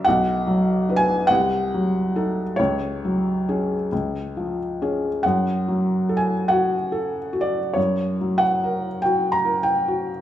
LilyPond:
\new Staff \with { instrumentName = "Felt piano" } { \time 4/4 \key fis \minor \tempo 4 = 47 << { fis''8. gis''16 ges''4 cis''4. r8 | fis''8. gis''16 fis''8. d''16 cis''8 fis''8 g''16 ais''16 g''8 | } \\ { \tuplet 3/2 { b,,8 fis8 <d' b'>8 c,8 ges8 <ees' a'>8 cis,8 fis8 <cis' gis'>8 cis,8 eis8 <cis' gis'>8 } | \tuplet 3/2 { fis,8 fis8 a'8 fis'8 a'8 fis'8 fis,8 fis8 ais'8 fis'8 ais'8 fis'8 } | } >> }